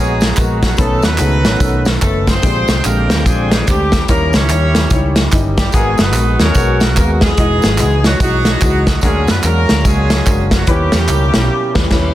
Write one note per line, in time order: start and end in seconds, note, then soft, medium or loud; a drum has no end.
0.00 0.31 A#1 medium
0.00 0.23 G#3 medium
0.00 0.35 G#3 medium
0.00 0.75 G#3 medium
0.00 0.23 B3 medium
0.00 0.75 B3 medium
0.00 0.76 B3 medium
0.00 0.75 D#4 medium
0.00 0.23 F#4 medium
0.00 0.34 F#4 medium
0.00 0.75 F#4 soft
0.00 0.35 G#4 medium
0.00 0.75 G#4 medium
0.00 0.23 C#5 medium
0.21 snare loud
0.21 closed hi-hat medium
0.21 tambourine medium
0.37 0.73 A#1 medium
0.37 0.62 F#3 medium
0.37 0.64 G#3 medium
0.37 0.64 B3 medium
0.37 0.62 F#4 medium
0.37 0.65 F#4 medium
0.37 0.65 A#4 medium
0.37 kick medium
0.37 clap loud
0.37 closed hi-hat medium
0.37 tambourine loud
0.62 0.78 F#3 medium
0.62 0.78 F#4 medium
0.62 kick medium
0.62 snare loud
0.62 closed hi-hat medium
0.62 tambourine soft
0.77 1.00 B1 medium
0.77 1.41 B2 medium
0.77 2.40 D#3 medium
0.77 1.05 A3 medium
0.77 1.04 A3 medium
0.77 2.40 B3 medium
0.77 2.40 C#4 medium
0.77 1.05 C#4 medium
0.77 1.57 C#4 medium
0.77 1.05 D#4 medium
0.77 1.03 D#4 medium
0.77 2.40 A4 medium
0.77 1.04 A4 medium
0.77 1.05 B4 loud
0.77 kick loud
0.77 closed hi-hat medium
0.77 tambourine medium
1.02 1.17 D#2 medium
1.02 1.87 B3 medium
1.02 1.83 D#4 medium
1.02 1.83 F#4 medium
1.02 1.87 B4 loud
1.02 snare loud
1.02 closed hi-hat medium
1.02 tambourine medium
1.18 1.46 C#2 medium
1.18 1.33 A3 medium
1.18 1.33 C#4 medium
1.18 1.34 D#4 medium
1.18 1.34 G#4 medium
1.18 clap medium
1.18 closed hi-hat medium
1.18 tambourine medium
1.45 1.59 A1 medium
1.45 1.53 A3 medium
1.45 1.54 C#4 soft
1.45 1.54 D#4 medium
1.45 1.54 C#5 medium
1.45 snare loud
1.45 closed hi-hat medium
1.45 tambourine soft
1.59 1.96 B1 medium
1.59 1.87 A3 medium
1.59 1.87 C#4 medium
1.59 1.87 D#4 medium
1.59 1.87 A4 medium
1.59 kick medium
1.59 closed hi-hat medium
1.59 tambourine medium
1.85 snare loud
1.85 closed hi-hat medium
1.85 tambourine soft
2.01 2.38 F#1 medium
2.01 2.29 A3 medium
2.01 2.26 A3 medium
2.01 2.29 C#4 medium
2.01 2.29 D#4 medium
2.01 2.26 A4 medium
2.01 2.29 B4 medium
2.01 kick medium
2.01 clap loud
2.01 closed hi-hat medium
2.01 tambourine loud
2.27 2.85 C4 medium
2.27 2.83 F4 medium
2.27 3.06 G#4 medium
2.27 2.85 C5 loud
2.27 kick medium
2.27 snare medium
2.27 closed hi-hat medium
2.27 tambourine soft
2.41 2.65 A#1 medium
2.41 3.06 A#2 medium
2.41 4.04 D3 medium
2.41 4.04 G#3 medium
2.41 2.70 G#3 medium
2.41 4.05 C4 medium
2.41 2.70 D4 medium
2.41 2.70 G4 medium
2.41 2.70 C5 medium
2.41 4.04 G5 medium
2.41 kick loud
2.41 closed hi-hat medium
2.41 tambourine medium
2.68 2.82 C2 medium
2.68 snare loud
2.68 closed hi-hat medium
2.68 tambourine medium
2.84 3.07 A#1 medium
2.84 2.99 G#3 medium
2.84 3.26 A#3 medium
2.84 3.25 D4 medium
2.84 2.99 D4 medium
2.84 3.63 F4 medium
2.84 2.99 G4 medium
2.84 3.26 A#4 medium
2.84 2.99 C5 medium
2.84 clap loud
2.84 closed hi-hat medium
2.84 tambourine medium
3.10 3.24 D2 medium
3.10 3.19 G#3 medium
3.10 3.19 D4 soft
3.10 3.19 G4 medium
3.10 3.19 A#4 medium
3.10 snare loud
3.10 closed hi-hat medium
3.10 tambourine soft
3.25 3.61 A#1 medium
3.25 3.53 G#3 medium
3.25 3.68 G#3 medium
3.25 3.68 C4 medium
3.25 3.53 D4 medium
3.25 3.68 D4 medium
3.25 3.53 G4 medium
3.25 3.68 G#4 medium
3.25 3.53 C5 medium
3.25 kick medium
3.25 closed hi-hat medium
3.25 tambourine medium
3.51 snare loud
3.51 closed hi-hat medium
3.51 tambourine medium
3.67 4.02 D2 medium
3.67 4.09 G3 medium
3.67 3.95 G#3 medium
3.67 4.07 C4 medium
3.67 3.95 D4 medium
3.67 4.07 D4 medium
3.67 3.95 G4 medium
3.67 4.09 G4 medium
3.67 3.95 C5 medium
3.67 kick medium
3.67 clap loud
3.67 closed hi-hat medium
3.67 tambourine loud
3.92 kick medium
3.92 snare loud
3.92 closed hi-hat medium
3.92 tambourine soft
4.08 4.30 D#2 medium
4.08 5.70 D#3 medium
4.08 4.72 D#3 medium
4.08 4.36 G3 medium
4.08 4.33 A#3 medium
4.08 5.70 C#4 medium
4.08 4.35 C#4 medium
4.08 4.36 D#4 medium
4.08 5.70 E4 medium
4.08 4.36 E4 medium
4.08 5.70 G4 medium
4.08 4.34 G4 medium
4.08 4.33 A#4 medium
4.08 4.36 C#5 loud
4.08 kick loud
4.08 closed hi-hat medium
4.08 tambourine medium
4.33 4.48 C#2 medium
4.33 5.13 C#4 medium
4.33 5.13 E4 medium
4.33 5.13 G4 medium
4.33 5.13 C#5 loud
4.33 snare loud
4.33 closed hi-hat medium
4.33 tambourine medium
4.49 4.85 D#2 medium
4.49 4.64 G3 medium
4.49 4.65 D#4 medium
4.49 4.64 E4 medium
4.49 4.64 C#5 medium
4.49 clap medium
4.49 closed hi-hat medium
4.49 tambourine medium
4.75 4.84 G3 medium
4.75 4.84 D#4 soft
4.75 4.85 E4 soft
4.75 4.85 C#5 medium
4.75 snare loud
4.75 closed hi-hat medium
4.75 tambourine soft
4.90 5.26 C#2 medium
4.90 5.19 G3 medium
4.90 5.19 D#4 medium
4.90 5.19 E4 medium
4.90 5.19 C#5 medium
4.90 kick medium
4.90 closed hi-hat medium
4.90 tambourine medium
5.16 snare loud
5.16 closed hi-hat medium
5.16 tambourine medium
5.32 5.67 G1 medium
5.32 5.59 G3 medium
5.32 5.59 D#4 medium
5.32 5.60 E4 medium
5.32 5.59 D#5 medium
5.32 kick medium
5.32 clap medium
5.32 closed hi-hat medium
5.32 tambourine medium
5.57 5.73 G3 medium
5.57 5.73 G4 medium
5.57 kick medium
5.57 snare medium
5.57 closed hi-hat medium
5.57 tambourine soft
5.72 5.95 G#1 medium
5.72 6.37 G#2 medium
5.72 6.00 G#3 medium
5.72 5.99 G#3 medium
5.72 7.35 G#3 medium
5.72 6.00 B3 medium
5.72 7.35 B3 medium
5.72 6.00 B3 medium
5.72 5.99 D#4 medium
5.72 7.35 F#4 medium
5.72 6.00 F#4 medium
5.72 5.99 G#4 medium
5.72 7.35 G#4 medium
5.72 6.01 A#4 medium
5.72 kick loud
5.72 closed hi-hat medium
5.72 tambourine medium
5.98 6.13 F#1 medium
5.98 6.41 B3 medium
5.98 6.78 D#4 medium
5.98 6.40 F#4 medium
5.98 6.41 B4 loud
5.98 snare loud
5.98 closed hi-hat medium
5.98 tambourine medium
6.13 6.36 A#1 medium
6.13 6.29 G#3 medium
6.13 6.29 B3 medium
6.13 6.29 F#4 medium
6.13 6.29 A#4 medium
6.13 clap medium
6.13 closed hi-hat medium
6.13 tambourine medium
6.39 6.53 D#2 medium
6.39 6.49 G#3 medium
6.39 6.49 B3 soft
6.39 6.82 C#4 loud
6.39 7.19 F#4 medium
6.39 6.49 F#4 soft
6.39 6.97 A#4 medium
6.39 6.49 A#4 medium
6.39 6.82 C#5 loud
6.39 snare loud
6.39 closed hi-hat medium
6.39 tambourine soft
6.55 6.97 B1 medium
6.55 6.82 G#3 medium
6.55 6.82 B3 medium
6.55 6.83 F#4 medium
6.55 6.83 A#4 medium
6.55 kick medium
6.55 closed hi-hat medium
6.55 tambourine medium
6.80 snare loud
6.80 closed hi-hat medium
6.80 tambourine medium
6.96 7.32 D#2 medium
6.96 7.23 G#3 medium
6.96 7.10 A#3 medium
6.96 7.23 B3 medium
6.96 7.23 F#4 medium
6.96 7.24 A#4 medium
6.96 7.10 A#4 medium
6.96 kick medium
6.96 clap medium
6.96 closed hi-hat medium
6.96 tambourine medium
7.21 8.01 G#3 medium
7.21 8.01 B3 medium
7.21 8.01 D#4 medium
7.21 8.01 G#4 medium
7.21 kick medium
7.21 snare loud
7.21 closed hi-hat medium
7.21 tambourine soft
7.37 7.60 E1 medium
7.37 8.01 E3 medium
7.37 9.00 E3 medium
7.37 7.65 G#3 medium
7.37 9.00 G#3 medium
7.37 9.00 D#4 medium
7.37 7.65 E4 medium
7.37 7.65 F#4 medium
7.37 9.00 F#4 medium
7.37 7.66 D#5 loud
7.37 kick loud
7.37 closed hi-hat medium
7.37 tambourine medium
7.62 7.81 G#1 medium
7.62 snare loud
7.62 closed hi-hat medium
7.62 tambourine medium
7.78 8.14 C#2 medium
7.78 7.93 G#3 medium
7.78 7.93 E4 medium
7.78 7.93 F#4 medium
7.78 7.93 D#5 medium
7.78 clap medium
7.78 closed hi-hat medium
7.78 tambourine medium
8.04 8.21 F#3 medium
8.04 8.13 G#3 medium
8.04 8.13 E4 soft
8.04 8.14 F#4 medium
8.04 8.21 F#4 medium
8.04 8.13 D#5 medium
8.04 snare loud
8.04 closed hi-hat medium
8.04 tambourine soft
8.20 8.55 B1 medium
8.20 8.84 F#3 medium
8.20 8.48 G#3 medium
8.20 9.00 B3 medium
8.20 9.00 D#4 medium
8.20 8.48 E4 medium
8.20 8.47 F#4 medium
8.20 8.84 F#4 medium
8.20 8.48 D#5 medium
8.20 kick medium
8.20 closed hi-hat medium
8.20 tambourine medium
8.45 snare loud
8.45 closed hi-hat medium
8.45 tambourine medium
8.61 8.97 C#2 medium
8.61 8.88 G#3 medium
8.61 8.89 E4 medium
8.61 8.89 F#4 medium
8.61 8.88 D#5 medium
8.61 kick medium
8.61 clap loud
8.61 closed hi-hat medium
8.61 tambourine loud
8.87 9.03 F#3 medium
8.87 9.03 F#4 medium
8.87 kick medium
8.87 snare loud
8.87 closed hi-hat medium
8.87 tambourine soft
9.01 9.25 D2 loud
9.01 9.66 D3 medium
9.01 10.65 F#3 medium
9.01 9.30 G#3 medium
9.01 10.65 G#3 medium
9.01 9.29 G#3 medium
9.01 10.65 A#3 medium
9.01 9.45 C#4 medium
9.01 9.30 D4 medium
9.01 10.64 F#4 medium
9.01 9.30 F#4 medium
9.01 9.29 G#4 medium
9.01 9.30 A#4 loud
9.01 kick loud
9.01 closed hi-hat medium
9.01 tambourine medium
9.28 9.42 F#2 medium
9.28 9.45 B3 medium
9.28 9.45 B4 medium
9.28 snare medium
9.28 closed hi-hat medium
9.28 tambourine medium
9.43 9.65 E2 medium
9.43 9.58 G#3 medium
9.43 9.86 A#3 medium
9.43 9.86 C#4 medium
9.43 9.58 D4 medium
9.43 9.58 F#4 medium
9.43 10.24 F#4 medium
9.43 9.58 A#4 medium
9.43 9.86 A#4 medium
9.43 clap loud
9.43 closed hi-hat medium
9.43 tambourine loud
9.69 9.84 D2 medium
9.69 9.78 G#3 medium
9.69 9.78 D4 medium
9.69 9.78 F#4 medium
9.69 9.78 A#4 medium
9.69 snare loud
9.69 closed hi-hat medium
9.69 tambourine soft
9.84 10.20 C#2 medium
9.84 10.11 G#3 medium
9.84 10.49 G#3 medium
9.84 10.65 C#4 medium
9.84 10.12 D4 medium
9.84 10.12 F#4 medium
9.84 10.49 G#4 medium
9.84 10.12 C#5 medium
9.84 kick medium
9.84 closed hi-hat medium
9.84 tambourine medium
10.10 snare loud
10.10 closed hi-hat medium
10.10 tambourine medium
10.26 10.61 F#1 medium
10.26 10.53 G#3 medium
10.26 10.54 D4 medium
10.26 10.54 F#4 medium
10.26 10.54 A#4 medium
10.26 kick medium
10.26 clap medium
10.26 closed hi-hat medium
10.26 tambourine loud
10.51 10.69 F#3 medium
10.51 10.69 F#4 medium
10.51 kick medium
10.51 snare loud
10.51 closed hi-hat medium
10.51 tambourine soft
10.67 10.89 D#2 medium
10.67 12.14 B2 medium
10.67 11.30 D#3 medium
10.67 10.95 G3 medium
10.67 11.93 G3 medium
10.67 11.88 A#3 medium
10.67 10.95 C#4 medium
10.67 12.14 C#4 medium
10.67 11.88 C#4 medium
10.67 10.95 E4 medium
10.67 12.14 E4 medium
10.67 12.14 G4 medium
10.67 11.93 G4 medium
10.67 10.95 B4 loud
10.67 kick loud
10.67 closed hi-hat medium
10.67 tambourine medium
10.92 11.06 E2 medium
10.92 snare loud
10.92 closed hi-hat medium
10.92 tambourine medium
11.08 11.30 C#2 medium
11.08 11.22 G3 medium
11.08 11.22 C#4 medium
11.08 11.23 E4 medium
11.08 11.23 A#4 medium
11.08 clap medium
11.08 closed hi-hat medium
11.08 tambourine medium
11.34 11.48 B1 medium
11.34 11.43 G3 medium
11.34 11.43 C#4 medium
11.34 11.43 E4 medium
11.34 11.43 C#5 medium
11.34 snare loud
11.34 closed hi-hat medium
11.34 tambourine soft
11.74 11.86 D#2 medium
11.74 11.86 G3 medium
11.74 11.85 C#4 medium
11.74 11.86 E4 medium
11.74 11.86 B4 medium
11.74 kick loud
11.74 snare loud
11.74 crash medium
11.91 12.09 D#2 medium
11.91 12.08 G3 medium
11.91 12.09 C#4 medium
11.91 12.09 E4 medium
11.91 12.09 B4 medium
11.91 kick loud
11.91 snare medium
11.91 crash medium